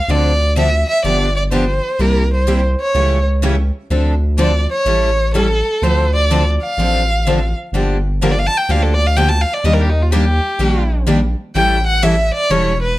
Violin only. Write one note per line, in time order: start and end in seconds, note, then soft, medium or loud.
0.00 0.12 F5 medium
0.11 0.57 D5 medium
0.59 0.87 E5 medium
0.89 1.04 E5 medium
1.05 1.34 D5 medium
1.36 1.43 D5 medium
1.52 2.02 C5 medium
2.01 2.32 A#4 medium
2.34 2.62 C5 medium
2.81 3.24 C#5 medium
4.39 4.68 D5 medium
4.71 5.31 C#5 medium
5.35 5.84 A4 medium
5.83 6.14 C5 medium
6.15 6.44 D5 medium
6.62 7.53 F5 loud
8.22 8.33 A#4 medium
8.31 8.40 D5 medium
8.39 8.48 F5 medium
8.46 8.59 A5 loud
8.57 8.72 G5 medium
8.71 8.84 F5 medium
8.82 8.95 A4 medium
8.94 9.08 D5 medium
9.06 9.18 F5 medium
9.17 9.30 G5 medium
9.29 9.43 A5 medium
9.41 9.55 F5 medium
9.53 9.66 D5 medium
9.64 9.74 D#5 loud
9.73 9.82 A#4 medium
9.81 9.91 G4 medium
9.89 10.04 D#4 medium
10.02 10.11 F4 medium
10.14 10.88 G4 medium
11.56 11.84 G5 medium
11.87 12.05 F#5 loud
12.03 12.34 E5 medium
12.34 12.52 D5 loud
12.51 12.81 C#5 medium
12.83 12.99 B4 medium